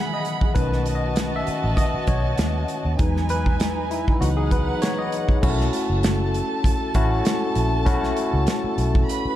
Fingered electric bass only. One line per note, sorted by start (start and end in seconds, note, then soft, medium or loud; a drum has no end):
0.56 1.43 B1 loud
1.48 muted fingered electric bass stroke soft
1.64 1.75 A1 medium
1.94 muted fingered electric bass stroke soft
2.07 2.33 B1 medium
2.38 2.64 D#2 medium
2.85 2.97 D#2 medium
3.00 4.04 E2 loud
4.21 4.72 C#2 loud
5.43 5.68 B1 loud
5.90 6.40 F#1 medium
6.95 7.20 A1 medium
7.56 7.86 A#1 medium
7.86 8.12 B1 loud
8.33 8.45 C#2 loud
8.64 muted fingered electric bass stroke soft
8.78 9.03 B1 medium
9.25 muted fingered electric bass stroke soft